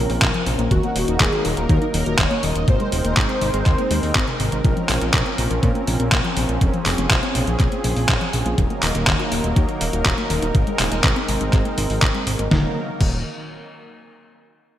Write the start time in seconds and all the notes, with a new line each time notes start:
Already playing: F3 C4 C#4 A#4
0.10 A#1 C4, open hi-hat
0.22 A#1 C3, kick, clap, closed hi-hat
0.34 F3, closed hi-hat
0.46 A#1 C3, open hi-hat
0.59 A#1 A#3, closed hi-hat
0.71 D#1 D#3 F#3 A#3 D#4 F#4, kick, closed hi-hat
0.83 A#3, closed hi-hat
0.96 D#1 D#3, open hi-hat
1.08 D#1 D#4, closed hi-hat
1.20 D#1 D#3 G#4, kick, clap, closed hi-hat
1.32 F#4, closed hi-hat
1.45 D#1 D#3 A#4, open hi-hat
1.57 D#1 A#3, closed hi-hat
1.69 D#2 D#3, kick, closed hi-hat
1.82 D#4, closed hi-hat
1.94 D#1 D#3 A#4, open hi-hat
2.06 D#1 F#4, closed hi-hat
2.19 D#1 D#3 C#5, kick, clap, closed hi-hat
2.31 A#3, closed hi-hat
2.43 D#1 D#3 D#5, open hi-hat
2.55 D#1 D#4, closed hi-hat
2.68 G#1 C3 G#3 C4 D#4 A#4 C5, kick, closed hi-hat
2.80 G#3, closed hi-hat
2.92 D#1 C3, open hi-hat
3.05 D#1 A#3, closed hi-hat
3.17 G#1 C3, kick, clap, closed hi-hat
3.29 C4, closed hi-hat
3.41 G#1 C3 C5, open hi-hat
3.54 G#1 G#3, closed hi-hat
3.66 D#2 C3, kick, clap, closed hi-hat
3.78 A#3, closed hi-hat
3.91 D#2 G#3, open hi-hat
4.03 D#2 D#3, open hi-hat
4.15 G#1 C4, kick, clap, closed hi-hat
4.28 C3, closed hi-hat
4.40 G#1 C3, open hi-hat
4.52 G#1 C3, closed hi-hat
4.64 A#1 C3 F3 C4 C#4, kick, closed hi-hat
4.77 F3, closed hi-hat
4.89 A#1 C3, clap, open hi-hat
5.01 A#1 A#3, closed hi-hat
5.14 A#1 C3, kick, clap, closed hi-hat
5.26 C4, closed hi-hat
5.38 A#1 C3, open hi-hat
5.50 A#1 F3, closed hi-hat
5.63 A#2 C3, kick, closed hi-hat
5.75 A#3, closed hi-hat
5.87 A#1 C3, open hi-hat
6.00 A#1 C4, closed hi-hat
6.12 A#1 C3, kick, clap, closed hi-hat
6.24 F3, closed hi-hat
6.37 A#1 C3, open hi-hat
6.49 A#1 A#3, closed hi-hat
6.61 F1 C3 G#4, kick, closed hi-hat
6.73 F3, closed hi-hat
6.86 F1 C3, clap, open hi-hat
6.98 F1 A#3, closed hi-hat
7.10 A#1 C3, kick, clap, closed hi-hat
7.23 C4, closed hi-hat
7.35 A#1 C3, open hi-hat
7.47 A#1 F3, closed hi-hat
7.60 A#1 C3, kick, clap, closed hi-hat
7.72 A#3, closed hi-hat
7.84 A#1 C3, open hi-hat
7.96 A#1 C4, open hi-hat
8.09 A#1 C3, kick, clap, closed hi-hat
8.21 F3, closed hi-hat
8.33 A#1 C3, open hi-hat
8.46 A#1 A#3, closed hi-hat
8.58 D#1 D#3 F#3 A#3 D#4 A#4, kick, closed hi-hat
8.70 A#3, closed hi-hat
8.82 D#1 D#3, clap, open hi-hat
8.95 D#1 D#4, closed hi-hat
9.07 D#1 D#3, kick, clap, closed hi-hat
9.19 F#4, closed hi-hat
9.32 D#1 D#3, open hi-hat
9.44 D#1 A#3, closed hi-hat
9.56 D#2 D#3, kick, closed hi-hat
9.69 D#4, closed hi-hat
9.81 D#1 D#3, open hi-hat
9.93 D#1 F#4, closed hi-hat
10.05 D#1 D#3, kick, clap, closed hi-hat
10.18 A#3, closed hi-hat
10.30 D#1 D#3, open hi-hat
10.42 D#1 D#4, closed hi-hat
10.55 G#1 C3 G#3 C4, kick, closed hi-hat
10.67 G#3, closed hi-hat
10.79 D#1 C3, clap, open hi-hat
10.92 D#1 A#3, closed hi-hat
11.04 G#1 C3, kick, clap, closed hi-hat
11.16 C4, closed hi-hat
11.28 G#1 C3, open hi-hat
11.41 G#1 G#3, closed hi-hat
11.53 G#1 C3, kick, clap, closed hi-hat
11.65 A#3, closed hi-hat
11.78 G#1 C3, open hi-hat
11.90 G#1 C4, open hi-hat
12.02 G#1 C3, kick, clap, closed hi-hat
12.14 G#3, closed hi-hat
12.27 G#1 C3, open hi-hat
12.39 G#1 A#3, closed hi-hat
12.51 D#1 D#3 F#3 A#3 D#4 A#4, kick, snare
13.01 D#1 D#3, kick, crash